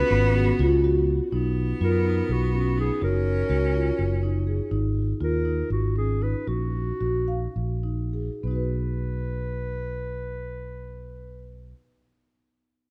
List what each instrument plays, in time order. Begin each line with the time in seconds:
Already playing: string section C#3 B3 F#4, cello B3, clarinet B4
0.11 fretless electric bass G#1, marimba B3
0.35 marimba F#4
0.59 fretless electric bass C#2, marimba F4
0.84 marimba F#4
1.32 fretless electric bass B1, cello B3, marimba D#4
1.81 fretless electric bass F#2, marimba F4, clarinet A#4
2.05 marimba D#4
2.29 fretless electric bass B1, clarinet F#4
2.54 marimba C#4, clarinet F#4
2.77 marimba D#4, clarinet G#4
3.01 fretless electric bass F#1, cello C#4, marimba F#4, clarinet A#4
3.50 fretless electric bass C#2, marimba F#4
3.74 marimba F4
3.99 fretless electric bass F#1
4.23 marimba D#4
4.47 marimba G#4
4.71 fretless electric bass G#1, marimba D#4
5.21 fretless electric bass D#2, marimba F4, clarinet A#4
5.45 marimba D#4
5.70 fretless electric bass G#1, clarinet F#4
5.96 marimba C#4, clarinet G#4
6.22 marimba D#4, clarinet B4
6.47 fretless electric bass A#1, marimba F#4, clarinet F#4
7.01 fretless electric bass A#1, marimba F#4
7.28 marimba F5
7.56 fretless electric bass A#1
7.83 marimba D#4
8.13 marimba G#4
8.43 fretless electric bass B1, marimba B3 D#4, clarinet B4
8.51 marimba F#4
8.55 marimba B4